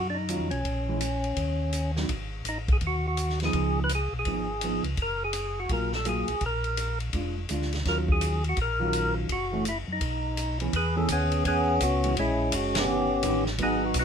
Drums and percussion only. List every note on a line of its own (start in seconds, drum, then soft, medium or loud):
0.29 hi-hat pedal soft
0.29 ride soft
0.51 ride soft
0.65 kick soft
0.65 ride soft
1.01 hi-hat pedal soft
1.01 ride medium
1.24 ride soft
1.37 kick soft
1.37 ride soft
1.73 hi-hat pedal soft
1.73 ride medium
1.96 snare soft
2.09 kick soft
2.09 ride soft
2.45 hi-hat pedal soft
2.45 ride soft
2.68 kick soft
2.68 ride soft
2.81 kick soft
2.81 ride soft
3.17 hi-hat pedal soft
3.17 ride soft
3.30 snare soft
3.40 snare soft
3.40 ride soft
3.53 kick soft
3.53 ride soft
3.89 hi-hat pedal medium
3.89 ride medium
4.25 kick soft
4.25 ride soft
4.61 hi-hat pedal soft
4.61 ride medium
4.84 ride soft
4.97 kick soft
4.97 ride soft
5.33 hi-hat pedal soft
5.33 ride medium
5.69 kick soft
5.69 ride soft
5.92 snare soft
6.05 hi-hat pedal soft
6.05 ride soft
6.28 ride soft
6.41 kick soft
6.41 ride soft
6.64 ride soft
6.77 hi-hat pedal soft
6.77 ride medium
7.00 ride soft
7.13 kick soft
7.13 ride soft
7.49 hi-hat pedal medium
7.49 ride soft
7.62 snare soft
7.73 snare soft
7.73 ride soft
7.85 kick soft
7.85 snare soft
7.85 ride soft
8.08 kick soft
8.21 hi-hat pedal soft
8.21 ride medium
8.44 ride soft
8.57 kick soft
8.57 ride soft
8.93 hi-hat pedal soft
8.93 ride medium
9.29 kick soft
9.29 ride soft
9.65 hi-hat pedal medium
9.65 ride medium
10.01 kick soft
10.01 ride medium
10.37 hi-hat pedal soft
10.37 ride medium
10.60 ride soft
10.73 kick soft
10.73 ride medium
11.09 kick soft
11.09 hi-hat pedal medium
11.09 ride medium
11.32 ride soft
11.45 kick soft
11.45 ride medium
11.81 kick soft
11.81 hi-hat pedal medium
11.81 ride medium
12.04 ride soft
12.17 kick soft
12.17 ride medium
12.52 kick soft
12.52 hi-hat pedal medium
12.52 ride medium
12.75 snare medium
12.75 ride medium
13.23 kick soft
13.23 hi-hat pedal soft
13.23 ride medium
13.46 snare soft
13.58 kick soft
13.58 ride medium
13.94 kick soft
13.94 hi-hat pedal soft
13.94 ride medium